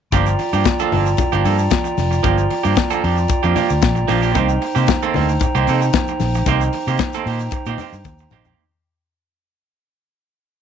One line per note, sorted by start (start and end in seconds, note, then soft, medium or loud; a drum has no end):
0.12 0.35 G1 loud
0.12 0.33 F3 medium
0.12 0.26 A#3 medium
0.12 0.26 D4 medium
0.12 4.31 F4 medium
0.12 0.26 G4 medium
0.12 4.31 D5 medium
0.12 8.53 G5 medium
0.12 8.53 A#5 medium
0.12 kick loud
0.12 closed hi-hat medium
0.12 muted conga medium
0.12 shaker medium
0.26 muted clean electric guitar stroke soft
0.26 shaker medium
0.39 muted clean electric guitar stroke soft
0.39 open hi-hat medium
0.39 muted conga soft
0.53 0.63 G2 medium
0.53 0.65 F3 soft
0.53 0.65 A#3 soft
0.53 0.65 D4 medium
0.53 0.66 G4 medium
0.53 shaker medium
0.64 muted clean electric guitar stroke soft
0.64 kick loud
0.64 snare loud
0.64 closed hi-hat medium
0.64 high conga medium
0.64 shaker medium
0.79 0.91 F3 medium
0.79 0.92 A#3 medium
0.79 0.92 D4 medium
0.79 0.92 A4 medium
0.79 shaker medium
0.92 1.14 G1 medium
0.92 1.08 F3 medium
0.92 1.06 A#3 medium
0.92 1.05 D4 medium
0.92 1.06 A4 medium
0.92 open hi-hat medium
0.92 low conga medium
1.06 muted clean electric guitar stroke soft
1.06 shaker medium
1.17 muted clean electric guitar stroke soft
1.17 kick loud
1.17 closed hi-hat medium
1.17 low conga medium
1.17 shaker medium
1.32 1.43 G1 medium
1.32 1.43 F3 medium
1.32 1.44 A#3 medium
1.32 1.44 D4 medium
1.32 1.45 G4 medium
1.32 shaker medium
1.44 1.67 G2 loud
1.44 1.61 F3 medium
1.44 1.58 A#3 medium
1.44 1.58 D4 medium
1.44 1.58 A4 medium
1.44 open hi-hat medium
1.44 muted conga medium
1.44 shaker medium
1.58 muted clean electric guitar stroke soft
1.58 shaker medium
1.70 muted clean electric guitar stroke soft
1.70 kick loud
1.70 snare loud
1.70 closed hi-hat medium
1.70 high conga medium
1.70 shaker medium
1.84 muted clean electric guitar stroke soft
1.84 shaker medium
1.98 2.20 F1 medium
1.98 snare soft
1.98 open hi-hat medium
1.98 high conga medium
1.98 shaker soft
2.11 muted clean electric guitar stroke soft
2.11 shaker medium
2.23 2.46 G1 loud
2.23 2.43 F3 medium
2.23 2.37 A#3 medium
2.23 2.37 D4 medium
2.23 2.36 G4 medium
2.23 kick medium
2.23 closed hi-hat medium
2.23 muted conga medium
2.23 shaker medium
2.38 muted clean electric guitar stroke soft
2.38 shaker medium
2.50 muted clean electric guitar stroke soft
2.50 open hi-hat medium
2.50 muted conga soft
2.63 2.75 G2 medium
2.63 2.75 F3 medium
2.63 2.75 A#3 medium
2.63 2.76 D4 medium
2.63 2.76 G4 medium
2.63 shaker medium
2.75 muted clean electric guitar stroke soft
2.75 kick loud
2.75 snare loud
2.75 closed hi-hat medium
2.75 high conga medium
2.75 shaker loud
2.90 3.02 F3 medium
2.90 3.02 A#3 medium
2.90 3.02 D4 medium
2.90 3.04 A4 loud
2.90 shaker medium
3.03 3.25 F2 medium
3.03 3.19 F3 soft
3.03 3.17 A#3 soft
3.03 3.16 D4 medium
3.03 3.16 G4 medium
3.03 open hi-hat medium
3.17 muted clean electric guitar stroke soft
3.17 shaker medium
3.28 muted clean electric guitar stroke soft
3.28 kick loud
3.28 closed hi-hat medium
3.28 shaker medium
3.43 3.54 F2 medium
3.43 3.54 F3 medium
3.43 3.54 A#3 medium
3.43 3.55 D4 medium
3.43 3.55 G4 medium
3.43 shaker soft
3.55 3.72 F3 medium
3.55 3.69 A#3 medium
3.55 3.69 D4 medium
3.55 3.69 G4 medium
3.55 open hi-hat medium
3.55 muted conga medium
3.55 low conga medium
3.55 shaker medium
3.70 3.81 D2 medium
3.70 muted clean electric guitar stroke soft
3.70 shaker medium
3.82 4.04 A#1 medium
3.82 muted clean electric guitar stroke soft
3.82 kick loud
3.82 snare loud
3.82 closed hi-hat medium
3.82 high conga medium
3.82 shaker medium
3.95 muted clean electric guitar stroke soft
3.95 shaker soft
4.08 4.35 A#1 medium
4.08 4.22 F3 medium
4.08 4.22 A#3 medium
4.08 4.21 D4 medium
4.08 4.21 G4 medium
4.08 snare soft
4.08 open hi-hat medium
4.08 high conga medium
4.08 shaker soft
4.22 4.34 F3 medium
4.22 4.34 A#3 medium
4.22 4.34 D4 medium
4.22 4.34 G4 medium
4.22 shaker medium
4.34 4.57 C2 loud
4.34 4.55 D#3 medium
4.34 4.49 A#3 medium
4.34 4.48 C4 medium
4.34 8.54 D#4 medium
4.34 4.48 G4 medium
4.34 8.54 C5 medium
4.34 kick loud
4.34 closed hi-hat medium
4.34 muted conga medium
4.34 shaker medium
4.49 muted clean electric guitar stroke soft
4.49 shaker medium
4.62 muted clean electric guitar stroke medium
4.62 open hi-hat medium
4.75 4.86 C3 medium
4.75 4.87 D#3 soft
4.75 4.87 A#3 medium
4.75 4.87 C4 medium
4.75 4.87 G4 medium
4.75 shaker medium
4.87 muted clean electric guitar stroke soft
4.87 kick loud
4.87 snare loud
4.87 closed hi-hat medium
4.87 high conga medium
4.87 shaker medium
5.02 5.14 D#3 medium
5.02 5.14 A#3 medium
5.02 5.14 C4 medium
5.02 5.14 A4 medium
5.02 shaker medium
5.14 5.37 D2 medium
5.14 5.31 D#3 medium
5.14 5.29 A#3 medium
5.14 5.28 C4 medium
5.14 5.29 A4 medium
5.14 open hi-hat medium
5.14 low conga medium
5.29 muted clean electric guitar stroke soft
5.29 shaker medium
5.40 muted clean electric guitar stroke medium
5.40 kick loud
5.40 closed hi-hat medium
5.40 low conga medium
5.40 shaker medium
5.55 5.65 C2 medium
5.55 5.67 D#3 medium
5.55 5.67 A#3 medium
5.55 5.68 C4 medium
5.55 5.69 G4 medium
5.55 shaker soft
5.67 5.89 C3 medium
5.67 5.83 D#3 medium
5.67 5.81 A#3 medium
5.67 5.81 C4 medium
5.67 5.81 A4 medium
5.67 open hi-hat medium
5.67 muted conga medium
5.67 shaker medium
5.82 muted clean electric guitar stroke medium
5.82 shaker medium
5.93 muted clean electric guitar stroke soft
5.93 kick loud
5.93 snare loud
5.93 closed hi-hat medium
5.93 high conga medium
5.93 shaker medium
6.08 muted clean electric guitar stroke medium
6.08 shaker medium
6.20 6.42 A#1 medium
6.20 snare soft
6.20 open hi-hat medium
6.20 high conga medium
6.20 shaker soft
6.34 muted clean electric guitar stroke medium
6.34 shaker medium
6.46 6.68 C2 loud
6.46 6.67 D#3 medium
6.46 6.61 A#3 medium
6.46 6.61 C4 medium
6.46 6.61 G4 medium
6.46 kick loud
6.46 closed hi-hat medium
6.46 muted conga medium
6.46 shaker medium
6.61 muted clean electric guitar stroke soft
6.61 shaker medium
6.73 muted clean electric guitar stroke soft
6.73 open hi-hat medium
6.73 muted conga soft
6.87 6.97 C3 medium
6.87 6.99 D#3 medium
6.87 6.99 A#3 medium
6.87 6.99 C4 medium
6.87 7.00 G4 medium
6.87 shaker soft
6.98 muted clean electric guitar stroke soft
6.98 kick loud
6.98 snare loud
6.98 closed hi-hat medium
6.98 high conga medium
6.98 shaker medium
7.13 7.25 D#3 medium
7.13 7.26 A#3 medium
7.13 7.27 C4 medium
7.13 7.27 A4 medium
7.13 shaker medium
7.26 7.47 A#2 medium
7.26 7.42 D#3 soft
7.26 7.40 A#3 medium
7.26 7.40 C4 medium
7.26 7.39 G4 medium
7.26 open hi-hat medium
7.40 muted clean electric guitar stroke soft
7.40 shaker medium
7.51 muted clean electric guitar stroke soft
7.51 kick loud
7.51 closed hi-hat medium
7.51 shaker medium
7.66 7.76 A#2 medium
7.66 7.79 D#3 medium
7.66 7.79 A#3 medium
7.66 7.80 C4 medium
7.66 7.80 G4 medium
7.66 shaker soft
7.78 7.95 D#3 medium
7.78 7.94 A#3 medium
7.78 7.93 C4 medium
7.78 7.93 G4 medium
7.78 open hi-hat medium
7.78 muted conga medium
7.78 low conga medium
7.78 shaker medium
7.93 8.03 G2 medium
7.93 muted clean electric guitar stroke soft
7.93 shaker medium
8.05 8.27 D#2 medium
8.05 muted clean electric guitar stroke soft
8.05 kick loud
8.05 high tom medium
8.05 high conga medium
8.05 shaker medium
8.18 muted clean electric guitar stroke medium
8.18 shaker medium
8.31 8.53 A#1 loud
8.31 8.47 D#3 medium
8.31 8.46 A#3 medium
8.31 8.46 C4 medium
8.31 8.45 G4 medium
8.31 mid tom medium
8.31 high conga medium
8.31 shaker soft
8.45 8.61 D#3 medium
8.45 8.61 A#3 medium
8.45 8.61 C4 medium
8.45 8.60 G4 medium
8.45 floor tom medium
8.45 shaker medium